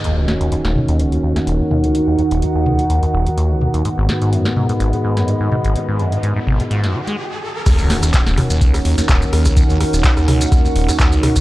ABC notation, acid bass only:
X:1
M:4/4
L:1/16
Q:"Swing 16ths" 1/4=126
K:Ebm
V:1 name="Acid bass" clef=bass
E,, D,, E,, E,, E,, E,,, E, E,, D,, E,, E,, E,, E,,, E, E,, D,, | E,, E,, E,, E,,, E, E,, D,, E,, E,, E,, E,,, E, E,, D,, E,, E,, | A,, A,,, A, A,, G,, A,, A,, A,, A,,, A, A,, G,, A,, A,, A,, A,,, | A, A,, G,, A,, A,, A,, A,,, A, A,, G,, E, A, z4 |
E,, D,, E,, E,, z E,,, E, E,, D,, E,, E,, E,, E,,, E, E,, D,, | E,, E,, E,, E,,, E, E,, D,, E,, E,, E,, E,,, E, E,, D,, E,, E,, |]